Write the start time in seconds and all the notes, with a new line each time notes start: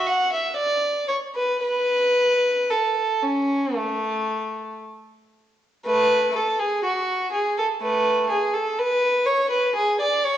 0.06 F#5
0.33 E5
0.57 D5
1.08 C#5
1.35 B4
1.63 B4
2.70 A4
3.22 C#4
3.75 A3
5.86 A3 B4
6.36 A4
6.59 G#4
6.85 F#4
7.32 G#4
7.58 A4
7.82 A3 B4
8.30 G#4
8.54 A4
8.79 B4
9.26 C#5
9.50 B4
9.76 G#4
10.01 D5
10.25 C#5